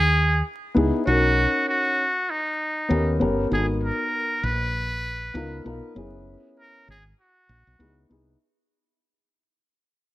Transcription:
0.00 0.41 D#2 medium
0.00 0.45 G#4 loud
0.74 0.90 C#2 medium
0.74 1.00 B3 medium
0.74 1.00 D#4 medium
0.74 1.01 E4 medium
0.74 1.01 G#4 medium
1.05 1.45 B1 medium
1.05 2.01 C#4 medium
1.05 2.01 D#4 medium
1.05 2.02 F#4 medium
1.05 1.64 F#4 loud
1.05 2.02 A#4 medium
1.69 2.32 F#4 medium
2.30 3.21 D#4 medium
2.89 3.22 D#2 medium
2.89 3.15 B3 medium
2.89 3.15 C#4 medium
2.89 3.16 G4 medium
2.89 3.16 A#4 medium
3.19 3.45 G1 medium
3.19 3.45 B3 medium
3.19 3.45 C#4 medium
3.19 3.46 G4 medium
3.19 3.46 A#4 medium
3.50 3.90 G#1 medium
3.50 4.46 B3 medium
3.50 4.46 D#4 medium
3.50 4.46 F#4 medium
3.50 3.67 G#4 medium
3.50 3.59 A4 medium
3.59 4.50 A#4 medium
3.83 4.46 A#4 medium
4.43 5.31 A#1 medium
4.43 5.66 B4 loud
5.34 5.59 C#2 medium
5.34 5.60 B3 medium
5.34 5.60 D#4 medium
5.34 5.61 F4 medium
5.34 5.61 A#4 medium
5.64 5.80 B1 medium
5.64 5.90 B3 medium
5.64 5.90 D#4 medium
5.64 5.91 F4 medium
5.64 5.91 A#4 medium
5.95 6.35 F#1 medium
5.95 6.90 B3 medium
5.95 6.91 C#4 medium
5.95 6.91 E4 medium
5.95 6.92 G#4 medium
6.60 6.87 A#4 medium
6.88 7.12 G#1 medium
6.88 7.04 G#4 medium
7.20 8.07 F#4 medium
7.49 7.63 A#1 medium
7.67 7.77 B1 medium
7.79 8.04 C#2 medium
7.79 8.05 B3 medium
7.79 8.05 D#4 medium
7.79 8.06 E4 medium
7.79 8.06 G#4 medium
8.09 8.35 C2 medium
8.09 8.35 B3 medium
8.09 8.35 D#4 medium
8.09 8.36 E4 medium
8.09 8.36 G#4 medium

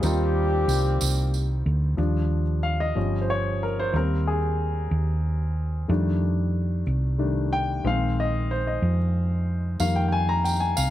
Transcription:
0.00 0.64 D#2 loud
0.00 0.96 D#3 medium
0.00 1.93 G3 medium
0.00 1.94 C4 medium
0.00 1.95 D#4 medium
0.00 tambourine soft
0.04 1.63 G3 medium
0.04 1.63 A#3 medium
0.04 1.63 C4 medium
0.04 1.95 F4 medium
0.04 1.63 G4 medium
0.68 0.98 C2 medium
0.68 tambourine medium
1.01 1.62 C2 medium
1.01 tambourine medium
1.34 tambourine soft
1.66 1.96 D2 medium
1.97 2.92 D#2 medium
1.97 2.41 F3 soft
1.97 2.41 G3 soft
1.97 2.42 D4 soft
2.63 2.80 F5 medium
2.80 3.23 D#5 medium
2.95 3.90 G1 medium
2.95 3.39 F3 soft
2.95 3.39 G3 soft
2.95 3.39 C#4 soft
3.21 3.28 C5 medium
3.30 3.63 C#5 medium
3.63 3.79 A#4 medium
3.80 3.94 C5 medium
3.93 4.87 D#2 medium
3.93 4.36 G3 medium
3.93 4.37 A#3 soft
3.93 4.37 C4 medium
3.93 4.29 A#4 medium
4.28 5.86 G#4 medium
4.91 5.85 D#2 medium
5.88 6.83 F2 loud
5.88 6.82 D#3 soft
5.88 6.83 G3 soft
5.88 6.83 A3 soft
5.88 6.83 D4 medium
6.87 7.80 C2 medium
7.18 7.48 D#3 soft
7.18 7.48 G3 soft
7.18 7.49 A3 soft
7.18 7.49 D4 medium
7.53 7.83 G5 loud
7.84 8.78 A#1 medium
7.84 9.76 D#3 soft
7.84 9.76 G#3 soft
7.84 9.76 C4 medium
7.84 8.19 F5 medium
8.20 8.52 D#5 medium
8.51 8.56 C5 medium
8.67 8.97 D#5 medium
8.82 9.76 F2 medium
9.80 10.74 F2 medium
9.80 10.23 D#3 medium
9.80 10.23 G3 soft
9.80 10.23 A#3 medium
9.80 9.97 F5 medium
9.80 tambourine soft
9.96 10.07 G5 medium
10.08 10.12 G5 medium
10.12 10.17 G#5 medium
10.29 10.45 A#5 medium
10.44 10.61 G5 medium
10.44 tambourine soft
10.60 10.77 G#5 medium
10.77 10.90 C2 medium
10.77 10.90 F5 medium
10.77 tambourine medium

